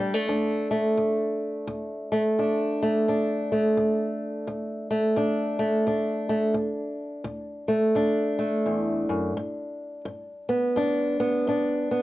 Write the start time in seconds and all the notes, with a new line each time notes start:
Already playing: D2 D4
0.00 G3
0.14 A3
0.28 D2 D4
0.71 A3
0.97 D2
1.67 D2
2.12 A3
2.39 D2 D4
2.82 A3
3.08 D2 D4
3.52 A3
3.77 D2
4.47 D2
4.90 A3
5.16 D2 D4
5.59 A3
5.87 D2 D4
6.29 A3
6.54 D2
7.24 D2
7.68 A3
7.95 D2 D4
8.39 A3
8.66 E2
9.09 F#2
9.37 G2
10.05 G2
10.49 B3
10.76 G2 D4
11.20 B3
11.47 G2 D4
11.91 B3